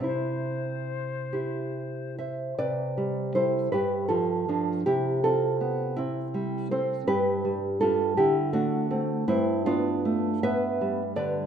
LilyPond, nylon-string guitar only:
\new Staff \with { instrumentName = "Nylon-string guitar" } { \time 6/8 \key c \major \tempo 4. = 53 << { r4. <e' g'>4 <c'' e''>8 | <b' d''>4 <a' c''>8 <g' b'>8 <f' a'>4 | <e' g'>8 <f' a'>4 <c' e'>4 <a' c''>8 | <g' b'>4 <f' a'>8 <e' g'>8 <d' fis'>4 |
<c' e'>8 <d' f'>4 <b' e''>4 <b' d''>8 | } \\ { <c c' e'>2. | c8 g8 <g e'>8 g,8 f8 <f d'>8 | c8 c'8 b8 r8 g8 c'8 | g,8 g8 <g d'>8 d8 a8 <a c'>8 |
g,8 b8 a8 b8 g8 d8 | } >> }